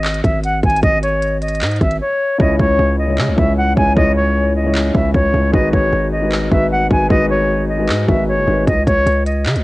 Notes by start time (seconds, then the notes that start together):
Already playing: G#1 D#5
0.05 clap, closed hi-hat
0.14 closed hi-hat
0.24 G#1 E5, kick, closed hi-hat
0.44 F#5, closed hi-hat
0.63 G#1 G#5, kick, closed hi-hat
0.70 closed hi-hat
0.76 closed hi-hat
0.83 G#1 D#5, kick, closed hi-hat
1.03 C#5, closed hi-hat
1.22 closed hi-hat
1.42 D#5, closed hi-hat
1.48 closed hi-hat
1.55 closed hi-hat
1.61 G#2, clap, closed hi-hat
1.66 closed hi-hat
1.71 closed hi-hat
1.76 closed hi-hat
1.81 G#1 E5, kick, closed hi-hat
1.91 closed hi-hat
2.01 C#5
2.38 C#2 C#3 G#3 E4 C#5 D#5, kick
2.59 C#2 C#5, kick
2.79 C#2
2.99 D#5
3.07 C#3 G#3 E4 C#5
3.18 C#3, clap
3.28 C#2
3.36 C#2 C#3 G#3 E4 C#5 E5, kick
3.58 F#5
3.76 C#2 C#3 G#3 E4 C#5 G#5, kick
3.95 C#2 C#3 G#3 E4 C#5 D#5, kick
4.16 C#5
4.56 D#5
4.64 C#3 G#3 E4 C#5
4.75 clap
4.93 C#2 C#3 G#3 E4 C#5 E5, kick
5.14 C#2 C#5, kick
5.32 C#2 C#3 G#3 E4 C#5
5.52 G#1 G#3 D#4 F#4 B4 D#5, kick
5.73 G#1 C#5, kick
5.93 G#1
6.12 D#5
6.21 G#3 D#4 F#4 B4
6.32 clap
6.50 G#1 G#3 D#4 F#4 B4 E5, kick
6.72 F#5
6.89 G#1 G#3 D#4 F#4 B4 G#5, kick
7.09 G#1 G#3 D#4 F#4 B4 D#5, kick
7.30 C#5
7.69 D#5
7.78 G#3 D#4 F#4 B4
7.89 G#2, clap
8.07 G#1 G#3 D#4 F#4 B4 E5, kick
8.28 C#5
8.38 F#1
8.46 G#1 G#3 D#4 F#4 B4
8.67 C#2 D#5, kick, closed hi-hat
8.87 C#2 C#5, kick, closed hi-hat
9.06 C#2, closed hi-hat
9.26 D#5, closed hi-hat
9.46 C#3, clap, closed hi-hat
9.55 C#2, closed hi-hat